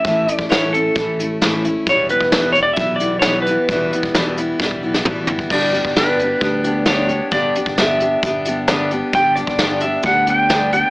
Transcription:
Already playing: E5
0.05 A1 A2 E3 A3 C#4 E4, kick, closed hi-hat
0.27 A3 C#4 E4, closed hi-hat
0.34 D5
0.39 A1, kick
0.49 A2 E3 A3 C#4 E4 C#5, snare, closed hi-hat
0.73 A3 C#4 E4 A4, closed hi-hat
0.95 A1 E3 A3, kick, closed hi-hat
1.00 C#4 E4
1.19 A3 C#4 E4, closed hi-hat
1.42 A2 E3 A3 C#4 E4, snare, closed hi-hat
1.65 C#4 E4, closed hi-hat
1.69 A3
1.87 E1 E2 B2 E3 G3 B3 C#5, kick, closed hi-hat
1.91 E4
2.09 E3 G3 B3 E4 B4, closed hi-hat
2.21 E1, kick
2.32 E2 B2 E3 G3 B3 E4, snare, closed hi-hat
2.53 E4 C#5, closed hi-hat
2.58 E3 G3 B3
2.63 D5
2.73 B1 E5, kick, closed hi-hat
2.77 E3 G3 B3 E4
2.96 D5
3.00 G3 B3 E4, closed hi-hat
3.04 E3
3.19 C#5, snare, closed hi-hat
3.24 E2 B2 E3 G3 B3 E4
3.42 B4
3.46 E3 G3 B3 E4, closed hi-hat
3.69 E1 E2 B2 E3 G3 B3 E4, kick, closed hi-hat
3.93 E3 G3 B3 E4, closed hi-hat
4.03 E1, kick
4.14 E2 B2 E3 G3 B3 E4, snare, closed hi-hat
4.37 E3 G3 B3 E4, closed hi-hat
4.59 E1 E3 G3 B3 E4, kick, snare
4.71 kick
4.82 B1 E3 G3 B3 E4
4.94 snare
5.05 A1 E2 B2 E3 G3 B3 E4, mid tom
5.27 G1 E3 G3 B3 E4, floor tom
5.39 kick
5.50 G1 G2 D3 G3 B3 D4 G4 D5, kick, crash
5.72 G3 B3 D4 G4, closed hi-hat
5.85 G1, kick
5.96 G2 D3 G3 B3 D4 G4 B4, snare, closed hi-hat
6.19 B3 D4 G4, closed hi-hat
6.23 G3
6.40 D2 G3 B3 D4 G4, kick, closed hi-hat
6.64 G3 B3 D4 G4, closed hi-hat
6.86 G2 D3 G3 B3 D4 G4 C#5, snare, closed hi-hat
7.08 G3 B3 D4 G4, closed hi-hat
7.31 G1 G2 D3 G3 B3 D4 G4 D5, kick, closed hi-hat
7.55 G3 B3 D4 G4, closed hi-hat
7.66 G1, kick
7.78 G2 D3 G3 B3 D4 G4 E5, snare, closed hi-hat
8.00 G3 B3 D4 G4, closed hi-hat
8.23 G1 G3 B3 D4 G4, kick, closed hi-hat
8.45 B3 D4 G4, closed hi-hat
8.50 G3
8.68 G2 D3 G3 B3 D4 G4, snare, closed hi-hat
8.91 G3 B3 D4 G4, closed hi-hat
9.13 G1 G2 D3 G3 B3 D4 G4 G5, kick, closed hi-hat
9.36 B3 D4 G4 D5, closed hi-hat
9.40 G3
9.47 G1, kick
9.58 G2 D3 G3 B3, snare, closed hi-hat
9.62 D4 G4
9.80 G4 E5, closed hi-hat
9.85 G3 B3 D4
10.03 D2 G3 B3 D4 F#5, kick, closed hi-hat
10.07 G4
10.26 G3 B3 D4 G4, closed hi-hat
10.30 G5
10.49 G2 D3 G3 B3 D4 G4, snare, closed hi-hat
10.72 G3 B3 D4 G4 G5, closed hi-hat

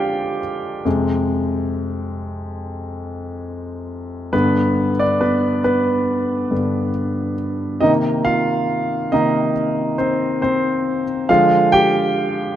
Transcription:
Already playing: D3 F3 G#3 D4 F4 G4 D5 F5 G5
0.85 F2 C3 G#3
4.33 G2 D3 B3 B4
4.99 D4 D5
5.21 B3 B4
5.64 B3 B4
6.51 G2 D3 B3
7.81 C3 D#3 A#3 D#4 D#5
8.25 F4 F5
9.12 C3 D#3 A#3 D#4 D#5
9.98 C4 C5
10.42 C4 C5
11.29 D3 F3 G#3 F4 F5
11.72 G4 G5

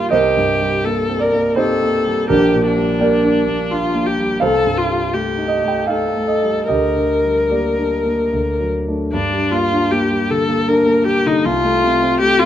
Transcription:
Already playing: D#3 G3 A#3 D#4 F4 A#4 D#5 G5
0.10 C2 G4 A#4 C5 D#5
0.37 G2
0.61 G3
0.85 A#3 A4
1.09 C4
1.19 A#4 D5
1.33 A#3
1.56 C4 D#4 G4 A4 C5
1.82 A#3
2.06 G3
2.28 A#1 D4 G4 A#4
2.54 A#2
2.66 D4
2.77 G3
2.99 A#3 G4 A#4 D5
3.24 D4
3.47 A#3
3.70 D4 F4
3.95 A#3
4.06 G4
4.18 G3
4.40 C2 A4 C5 F5
4.65 G2
4.78 F4
4.89 G3
5.13 A3 G4
5.38 D#4
5.48 D#5
5.63 A3
5.68 G5
5.87 D#4 A4 F5
6.16 A3
6.27 D#5
6.43 G3
6.68 D2 G4 A#4 D#5
6.96 D3
7.24 G3
7.50 A#3 G4 A#4 D5
7.79 D4
8.06 A#3
8.33 D2
8.60 F#3
8.88 A3 D4
9.13 G2 D4
9.32 G3
9.51 A#3 F4
9.73 D4
9.91 A#3 G4
10.11 G3
10.30 D3 A4
10.48 A#3
10.68 D4 A#4
10.87 A#3
11.06 G3 G4
11.26 D3 D#4
11.45 C2 F4
11.64 A3
11.83 C3
12.02 C4
12.20 A3 G4
12.39 C3 F4

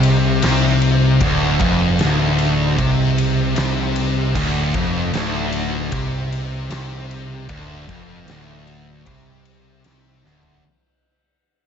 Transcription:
Already playing: C2 C3
0.03 ride
0.42 C2 C3, snare, ride
0.82 ride
1.20 D1 D2, kick, ride
1.60 F1, kick, ride
1.64 F2
1.99 D1 D2, snare, ride
2.04 D2
2.39 ride
2.78 C2 C3, kick, ride
3.18 ride
3.56 C2 C3, snare, ride
3.96 ride
4.35 D1 D2, kick, crash
4.74 F1 F2, kick, ride
5.13 D1 D2, snare, ride
5.52 ride
5.92 C2 C3, kick, ride
6.32 ride
6.71 C2 C3, snare, ride
7.11 ride
7.49 D1 D2, kick, ride
7.88 F1 F2, kick, ride
8.27 D1 D2, snare, ride
8.67 ride
9.06 C2 C3, kick, ride
9.45 ride
9.84 C2 C3, snare, ride
10.25 D1 D2, snare
10.43 floor tom

